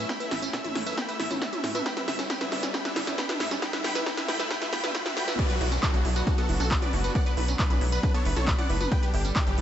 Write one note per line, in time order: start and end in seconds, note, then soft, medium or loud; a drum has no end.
0.00 1.82 A3 medium
0.00 1.82 C#4 medium
0.00 1.82 E4 medium
0.00 riser medium
0.09 0.14 B3 medium
0.09 0.18 G5 medium
0.09 0.18 B5 loud
0.09 kick loud
0.09 snare medium
0.09 closed hi-hat medium
0.09 tambourine medium
0.20 0.25 B4 loud
0.20 0.29 E5 medium
0.20 closed hi-hat medium
0.20 tambourine soft
0.31 0.49 A1 loud
0.31 0.34 E4 medium
0.31 0.40 E5 medium
0.31 snare medium
0.31 open hi-hat loud
0.42 0.47 C#4 medium
0.42 closed hi-hat medium
0.42 tambourine medium
0.53 0.58 B2 medium
0.53 0.62 E5 medium
0.53 kick loud
0.53 snare medium
0.53 closed hi-hat medium
0.53 tambourine medium
0.64 0.74 A1 medium
0.64 0.69 C#4 medium
0.64 0.73 E5 medium
0.64 closed hi-hat medium
0.64 mid tom medium
0.64 tambourine soft
0.75 0.94 A1 medium
0.75 0.80 E4 medium
0.75 snare medium
0.75 open hi-hat loud
0.86 0.94 B4 medium
0.86 0.95 E5 medium
0.86 closed hi-hat medium
0.86 tambourine medium
0.97 1.03 B3 medium
0.97 1.06 G5 medium
0.97 1.06 B5 medium
0.97 kick loud
0.97 snare medium
0.97 closed hi-hat medium
0.97 tambourine medium
1.08 1.14 B4 medium
1.08 1.17 E5 medium
1.08 closed hi-hat medium
1.08 tambourine soft
1.20 1.29 A1 loud
1.20 1.23 E4 medium
1.20 1.28 E5 medium
1.20 snare medium
1.20 open hi-hat loud
1.31 1.49 A1 medium
1.31 1.36 C#4 medium
1.31 closed hi-hat medium
1.31 mid tom medium
1.31 tambourine medium
1.42 1.47 B2 medium
1.42 1.50 E5 medium
1.42 kick loud
1.42 snare medium
1.42 closed hi-hat medium
1.42 tambourine medium
1.53 1.58 C#4 medium
1.53 1.61 E5 medium
1.53 closed hi-hat medium
1.53 mid tom medium
1.53 tambourine soft
1.64 1.82 A2 medium
1.64 1.69 E4 medium
1.64 snare medium
1.64 open hi-hat loud
1.75 1.82 B4 medium
1.75 1.83 E5 medium
1.75 closed hi-hat medium
1.75 mid tom medium
1.75 tambourine medium
1.86 5.35 G3 medium
1.86 1.91 B3 medium
1.86 3.61 B3 medium
1.86 5.35 E4 medium
1.86 1.95 G5 medium
1.86 1.94 B5 medium
1.86 kick loud
1.86 snare medium
1.86 closed hi-hat medium
1.86 tambourine medium
1.97 2.02 B4 loud
1.97 2.06 E5 medium
1.97 snare medium
1.97 closed hi-hat medium
1.97 tambourine soft
2.08 2.26 G1 loud
2.08 2.11 E4 medium
2.08 2.17 E5 medium
2.08 snare medium
2.08 open hi-hat loud
2.19 2.24 C#4 medium
2.19 snare medium
2.19 closed hi-hat medium
2.19 tambourine medium
2.30 2.35 B3 medium
2.30 2.39 G5 medium
2.30 2.39 B5 medium
2.30 kick loud
2.30 snare medium
2.30 closed hi-hat medium
2.30 tambourine medium
2.41 2.50 G1 medium
2.41 2.46 B4 loud
2.41 2.50 E5 medium
2.41 snare medium
2.41 closed hi-hat medium
2.41 tambourine soft
2.52 2.70 G1 loud
2.52 2.55 E4 medium
2.52 2.61 E5 medium
2.52 snare medium
2.52 open hi-hat loud
2.63 2.68 C#4 medium
2.63 snare medium
2.63 closed hi-hat medium
2.63 tambourine medium
2.74 2.79 B3 medium
2.74 2.83 G5 medium
2.74 2.83 B5 loud
2.74 kick loud
2.74 snare medium
2.74 closed hi-hat medium
2.74 tambourine medium
2.85 2.90 B4 loud
2.85 2.94 E5 medium
2.85 snare medium
2.85 closed hi-hat medium
2.85 tambourine soft
2.96 3.05 G1 medium
2.96 2.99 E4 medium
2.96 3.05 E5 medium
2.96 snare loud
2.96 open hi-hat loud
3.07 3.25 G1 medium
3.07 3.12 C#4 medium
3.07 snare medium
3.07 closed hi-hat medium
3.07 tambourine medium
3.18 3.23 B3 medium
3.18 3.27 G5 medium
3.18 3.27 B5 loud
3.18 kick loud
3.18 snare medium
3.18 closed hi-hat medium
3.18 mid tom medium
3.18 tambourine medium
3.29 3.34 B4 loud
3.29 3.38 E5 medium
3.29 snare medium
3.29 closed hi-hat medium
3.29 mid tom medium
3.29 tambourine soft
3.40 3.58 G2 medium
3.40 3.43 E4 medium
3.40 3.49 E5 medium
3.40 snare loud
3.40 open hi-hat loud
3.51 3.56 C#4 medium
3.51 snare medium
3.51 closed hi-hat medium
3.51 tambourine medium
3.62 5.37 A3 medium
3.62 3.67 B3 medium
3.62 3.71 G5 medium
3.62 3.71 B5 loud
3.62 kick loud
3.62 snare loud
3.62 closed hi-hat medium
3.62 tambourine medium
3.73 3.78 B4 loud
3.73 3.82 E5 medium
3.73 snare medium
3.73 closed hi-hat medium
3.73 tambourine soft
3.84 4.02 G1 loud
3.84 3.89 B3 medium
3.84 3.93 G5 medium
3.84 3.93 B5 loud
3.84 snare loud
3.84 open hi-hat loud
3.95 4.00 B4 loud
3.95 4.04 E5 medium
3.95 snare medium
3.95 closed hi-hat medium
3.95 tambourine medium
4.06 4.11 B3 medium
4.06 4.15 G5 medium
4.06 4.15 B5 loud
4.06 kick loud
4.06 snare loud
4.06 closed hi-hat medium
4.06 tambourine medium
4.17 4.27 G1 medium
4.17 4.22 B4 loud
4.17 4.26 E5 medium
4.17 snare medium
4.17 closed hi-hat medium
4.17 mid tom medium
4.17 tambourine soft
4.28 4.47 G1 medium
4.28 4.33 B3 medium
4.28 4.37 G5 medium
4.28 4.37 B5 loud
4.28 snare loud
4.28 open hi-hat loud
4.39 4.44 B4 loud
4.39 4.48 E5 medium
4.39 snare medium
4.39 closed hi-hat medium
4.39 tambourine medium
4.50 4.56 B3 medium
4.50 4.59 G5 medium
4.50 4.59 B5 loud
4.50 kick loud
4.50 snare loud
4.50 closed hi-hat medium
4.50 tambourine medium
4.62 4.67 B4 loud
4.62 4.70 E5 medium
4.62 snare medium
4.62 closed hi-hat medium
4.62 tambourine soft
4.73 4.82 G2 loud
4.73 4.78 B3 medium
4.73 4.81 G5 medium
4.73 4.81 B5 loud
4.73 snare loud
4.73 open hi-hat loud
4.84 5.02 G1 loud
4.84 4.89 B4 loud
4.84 4.92 E5 medium
4.84 snare loud
4.84 closed hi-hat medium
4.84 mid tom medium
4.84 tambourine medium
4.95 5.00 B3 medium
4.95 5.03 G5 medium
4.95 5.03 B5 loud
4.95 kick loud
4.95 snare loud
4.95 closed hi-hat medium
4.95 tambourine medium
5.06 5.11 B4 loud
5.06 5.14 E5 medium
5.06 snare loud
5.06 closed hi-hat medium
5.06 mid tom medium
5.06 tambourine soft
5.17 5.35 G2 medium
5.17 5.22 B3 medium
5.17 5.25 G5 medium
5.17 5.25 B5 loud
5.17 snare loud
5.17 open hi-hat loud
5.28 5.33 B4 loud
5.28 5.36 E5 medium
5.28 snare loud
5.28 closed hi-hat medium
5.28 mid tom medium
5.28 tambourine medium
5.39 8.88 F#3 medium
5.39 5.44 B3 medium
5.39 8.88 B3 medium
5.39 9.61 D4 medium
5.39 5.47 B4 medium
5.39 5.47 D5 loud
5.39 kick loud
5.39 closed hi-hat medium
5.39 crash loud
5.39 tambourine medium
5.39 downlifter medium
5.50 5.59 F#4 medium
5.50 5.55 B4 loud
5.50 closed hi-hat medium
5.50 tambourine soft
5.61 5.79 B1 loud
5.61 5.64 E4 medium
5.61 5.70 F#4 medium
5.61 open hi-hat loud
5.72 5.77 C#4 medium
5.72 closed hi-hat medium
5.72 tambourine medium
5.83 5.88 B2 medium
5.83 5.92 F#4 medium
5.83 kick loud
5.83 clap loud
5.83 closed hi-hat medium
5.83 tambourine medium
5.94 6.03 B1 medium
5.94 5.99 C#4 medium
5.94 6.03 F#4 medium
5.94 closed hi-hat medium
5.94 tambourine soft
6.05 6.23 B1 loud
6.05 6.10 E4 medium
6.05 open hi-hat loud
6.16 6.25 F#4 medium
6.16 6.24 B4 medium
6.16 closed hi-hat medium
6.16 tambourine medium
6.27 6.35 D4 medium
6.27 6.36 F#4 medium
6.27 kick loud
6.27 closed hi-hat medium
6.27 tambourine medium
6.38 6.46 B3 loud
6.38 6.47 F#4 medium
6.38 6.47 A4 medium
6.38 closed hi-hat medium
6.38 tambourine soft
6.49 6.58 F#1 loud
6.49 6.52 E4 medium
6.49 6.58 F#4 medium
6.49 open hi-hat loud
6.60 6.78 B1 loud
6.60 6.65 C#4 medium
6.60 6.69 F#4 medium
6.60 6.69 A4 medium
6.60 closed hi-hat medium
6.60 tambourine medium
6.71 6.76 B2 medium
6.71 6.80 F#4 medium
6.71 kick loud
6.71 clap loud
6.71 closed hi-hat medium
6.71 mid tom medium
6.71 tambourine medium
6.82 6.87 C#4 medium
6.82 6.91 B4 medium
6.82 6.91 D5 medium
6.82 closed hi-hat medium
6.82 mid tom medium
6.82 tambourine soft
6.93 7.11 F#1 medium
6.93 6.98 E4 medium
6.93 7.02 F#4 medium
6.93 open hi-hat loud
7.04 7.13 F#4 medium
7.04 7.12 B4 medium
7.04 closed hi-hat medium
7.04 tambourine medium
7.15 7.20 B3 medium
7.15 7.24 D5 medium
7.15 7.24 F#5 loud
7.15 kick loud
7.15 closed hi-hat medium
7.15 tambourine medium
7.26 7.35 B4 medium
7.26 7.31 B4 loud
7.26 closed hi-hat medium
7.26 tambourine soft
7.37 7.55 B1 loud
7.37 7.40 E4 medium
7.37 7.46 B4 medium
7.37 open hi-hat loud
7.48 7.53 C#4 medium
7.48 closed hi-hat medium
7.48 tambourine medium
7.59 7.64 B2 medium
7.59 7.68 B4 medium
7.59 kick loud
7.59 clap loud
7.59 closed hi-hat medium
7.59 tambourine medium
7.70 7.79 B1 loud
7.70 7.75 C#4 medium
7.70 7.79 B4 medium
7.70 closed hi-hat medium
7.70 mid tom medium
7.70 tambourine soft
7.81 7.99 B1 medium
7.81 7.86 E4 medium
7.81 open hi-hat loud
7.92 8.00 B4 medium
7.92 8.01 B4 medium
7.92 closed hi-hat medium
7.92 tambourine medium
8.03 8.11 D4 medium
8.03 8.12 B4 medium
8.03 kick loud
8.03 closed hi-hat medium
8.03 tambourine soft
8.14 8.22 B3 loud
8.14 8.23 A4 medium
8.14 8.23 C#5 medium
8.14 closed hi-hat medium
8.14 tambourine soft
8.25 8.35 F#1 loud
8.25 8.28 E4 medium
8.25 8.34 B4 medium
8.25 open hi-hat loud
8.36 8.55 B1 loud
8.36 8.42 C#4 medium
8.36 8.45 A4 medium
8.36 8.45 C#5 medium
8.36 closed hi-hat medium
8.36 mid tom medium
8.36 tambourine medium
8.47 8.53 B2 medium
8.47 8.56 B4 medium
8.47 kick loud
8.47 clap loud
8.47 closed hi-hat medium
8.47 tambourine medium
8.59 8.64 C#4 medium
8.59 8.67 D5 medium
8.59 8.67 F#5 loud
8.59 closed hi-hat medium
8.59 mid tom medium
8.59 tambourine soft
8.70 8.88 F#1 medium
8.70 8.75 E4 medium
8.70 8.78 B4 medium
8.70 open hi-hat loud
8.81 8.89 B4 medium
8.81 8.88 B4 medium
8.81 closed hi-hat medium
8.81 mid tom medium
8.81 tambourine medium
8.92 9.61 G3 medium
8.92 8.97 B3 medium
8.92 9.61 A4 medium
8.92 9.00 B4 medium
8.92 9.61 B4 medium
8.92 9.00 G5 loud
8.92 kick loud
8.92 closed hi-hat medium
8.92 tambourine soft
9.03 9.11 G4 medium
9.03 9.08 B4 loud
9.03 closed hi-hat medium
9.03 tambourine soft
9.14 9.32 G1 loud
9.14 9.17 E4 medium
9.14 9.22 G4 medium
9.14 open hi-hat loud
9.25 9.30 C#4 medium
9.25 closed hi-hat medium
9.25 tambourine medium
9.36 9.41 B2 medium
9.36 9.45 G4 medium
9.36 kick loud
9.36 clap loud
9.36 closed hi-hat medium
9.36 tambourine medium
9.47 9.56 G1 medium
9.47 9.52 C#4 medium
9.47 9.56 G4 medium
9.47 closed hi-hat medium
9.47 tambourine soft
9.58 9.61 G1 loud
9.58 9.61 E4 medium
9.58 open hi-hat loud